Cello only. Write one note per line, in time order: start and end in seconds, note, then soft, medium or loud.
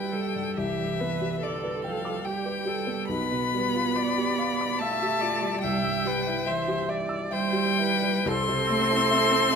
0.00 0.57 G3 medium
0.58 1.44 E3 medium
1.42 1.88 D3 soft
1.86 2.25 F3 medium
2.26 3.10 G3 medium
3.08 4.82 B3 medium
4.80 5.62 A3 medium
5.62 6.45 G3 medium
6.48 6.89 E3 medium
7.30 8.28 G3 medium
8.26 9.55 C4 loud